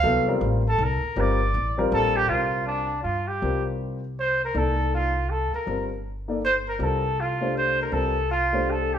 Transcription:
X:1
M:3/4
L:1/8
Q:"Swing" 1/4=160
K:Cdor
V:1 name="Trumpet"
f z2 A B2 | d3 z A G | F2 D2 F G- | G z3 c B |
A2 F2 A B- | B z3 c B | A2 F2 c B | A2 F2 A G |]
V:2 name="Grand piano"
[^F,=B,=EA] [G,C=F_B]2 z3 | [G,CFB] z2 [G,CFB]3 | [G,CFB]3 z3 | [G,CFB]3 z3 |
[B,EAd]3 z3 | [G,CFB] z2 [B,EAd] z2 | [G,CFB] z2 [A,DGc]3 | [G,CFB] z2 [A,DGc]3 |]
V:3 name="Upright bass" clef=bass
C,,2 A,,,2 C,, z | G,,,2 A,,,2 B,,,2 | C,,4 G,,2 | C,,6 |
C,,4- C,, z | G,,,6 | C,,6 | C,,6 |]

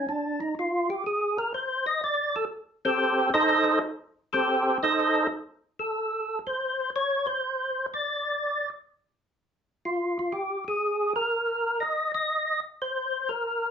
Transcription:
X:1
M:4/4
L:1/8
Q:"Swing" 1/4=122
K:Cdor
V:1 name="Tonewheel organ"
D E F G _A B c e | d A z [CGAc]2 [EAce]2 z | z [CGAc]2 [EAce]2 z2 A- | A2 c2 _d c3 |
d3 z4 z | F F G _A2 B3 | e e2 z c2 B2 |]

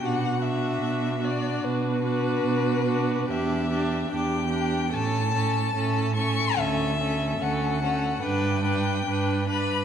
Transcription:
X:1
M:4/4
L:1/8
Q:1/4=73
K:Bm
V:1 name="Violin"
f e2 d B4 | e2 g2 a3 c' | e2 f2 g3 b |]
V:2 name="Violin"
F F2 F2 F2 F | G G G G A A A A | A A A A B B B B |]
V:3 name="Viola"
D D2 D2 D2 D | D D D D C C C C | C C C C D D D D |]
V:4 name="Cello" clef=bass
B,,2 B,,2 B,,2 B,,2 | E,,2 E,,2 A,,2 A,,2 | D,,2 D,,2 G,,2 G,,2 |]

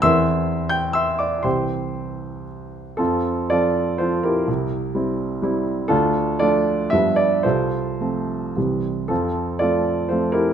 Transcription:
X:1
M:3/4
L:1/8
Q:1/4=118
K:F
V:1 name="Grand piano"
[ec'e']3 [gg'] [ec'e'] [dd'] | [cgc']4 z2 | [CFA]2 [FAd]2 [FAc] [EGB]- | [EGB]4- [EGB] z |
[DFA]2 [FAd]2 e d | [FAc]4 z2 | [CFA]2 [FAd]2 [FAc] [EGB] |]
V:2 name="Grand piano" clef=bass
[E,,E,CB]6 | [C,,E,CG]6 | F,,2 [F,C]2 [F,C]2 | C,,2 [G,CE]2 [G,CE]2 |
D,,2 [F,A,D]2 [G,,F,G,=B,]2 | C,,2 [F,A,C]2 [C,,E,G,C]2 | F,,2 [F,A,C]2 [F,A,C]2 |]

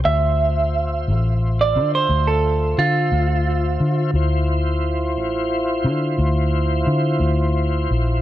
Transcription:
X:1
M:12/8
L:1/16
Q:3/8=58
K:Ddor
V:1 name="Clean electric guitar"
e8- e d2 c2 A3 F8 | z24 |]
V:2 name="Tonewheel organ"
[Fce]24 | [EFc]24 |]
V:3 name="Fingered electric bass" clef=bass
D,,6 A,,,4 D,2 D,,4 D,2 D,,4 D,2 | D,,6 A,,,4 D,2 D,,4 D,2 D,,4 _B,,,2 |]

